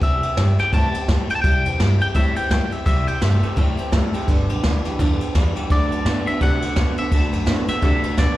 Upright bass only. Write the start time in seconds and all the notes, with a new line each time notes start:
0.02 C2
0.23 E2
0.37 G2
0.59 muted upright bass stroke
0.73 A2
0.94 muted upright bass stroke
1.08 A2
1.29 muted upright bass stroke
1.44 C2
1.66 E2
1.80 G2
2.01 muted upright bass stroke
2.15 A2
2.37 muted upright bass stroke
2.51 A2
2.72 muted upright bass stroke
2.86 C2
3.07 E2
3.22 G2
3.43 muted upright bass stroke
3.57 A2
3.79 muted upright bass stroke
3.92 A2
4.14 muted upright bass stroke
4.28 G1
4.50 B1
4.63 D2
4.99 E2
5.21 muted upright bass stroke
5.35 E2
5.56 muted upright bass stroke
5.70 D2
5.91 F#2
6.05 A2
6.27 muted upright bass stroke
6.41 C3
6.62 muted upright bass stroke
6.76 B2
6.97 muted upright bass stroke
7.12 D2
7.33 F#2
7.47 A2
7.68 muted upright bass stroke
7.82 C3
8.04 muted upright bass stroke
8.18 B2